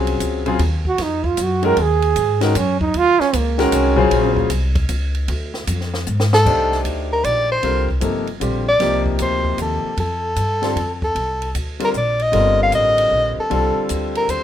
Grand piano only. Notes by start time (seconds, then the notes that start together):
Already playing: F#3 C4 C#4 F4 G#4
0.46 C#3 F#3 C4 F4 G#4
1.62 D#3 G#3 C#4 F#4 A#4
2.41 D#3 G#3 C#4 F#4 A#4
3.58 D#3 G#3 C#4 F#4 A#4
3.96 C#3 F#3 F4 G#4 C5
6.45 A3 D4 D#4 G4 C5
7.63 D3 G3 C4 F4 A#4
8.00 C3 F3 A#3 D#4 A4
8.40 D3 G3 C4 F4 G4
8.80 C3 F3 A#3 D#4 G4
10.62 D3 G3 C4 F4 A4
11.80 D3 G3 C4 F4 A#4
12.32 D3 G3 C4 F4 A#4
13.50 D3 G3 C4 F4 A4